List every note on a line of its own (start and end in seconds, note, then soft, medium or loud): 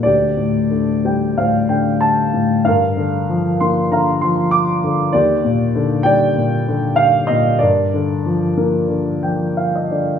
0.03 2.62 D2 soft
0.03 1.34 G4 soft
0.03 0.66 D5 medium
0.37 1.36 A2 soft
0.71 1.68 D3 soft
1.05 2.30 G3 soft
1.05 1.39 G5 soft
1.38 2.32 A2 soft
1.38 2.62 C5 soft
1.38 1.70 F5 soft
1.69 2.62 D3 soft
1.69 2.02 G5 medium
2.01 2.31 A5 medium
2.34 2.65 A2 soft
2.65 5.09 G2 soft
2.65 3.88 A#4 soft
2.65 3.24 F5 medium
2.97 3.90 D3 soft
3.29 4.21 F3 soft
3.60 4.80 A#3 soft
3.60 3.92 C6 medium
3.92 4.83 D3 soft
3.92 5.10 F5 soft
3.92 4.23 A#5 medium
4.21 5.11 F3 soft
4.21 4.53 C6 medium
4.51 4.80 D6 medium
4.84 5.13 D3 soft
5.13 7.57 D#2 soft
5.13 6.33 G4 soft
5.13 6.01 D5 medium
5.44 6.35 A#2 soft
5.75 6.67 D3 soft
6.03 7.26 G3 medium
6.03 7.26 D5 medium
6.03 7.00 G5 medium
6.37 7.29 A#2 soft
6.68 7.59 D3 soft
6.96 7.29 F5 medium
7.27 7.60 A#2 soft
7.27 7.61 D#5 medium
7.59 10.19 G2 soft
7.59 9.53 A#4 soft
7.59 9.51 D5 medium
7.94 8.87 D3 soft
8.26 9.22 F3 soft
8.58 9.87 A#3 soft
8.89 9.90 D3 soft
9.23 10.19 F3 soft
9.23 9.54 G5 soft
9.57 9.73 F5 soft
9.75 9.91 D#5 soft
9.91 10.19 D3 soft
9.91 10.19 D5 soft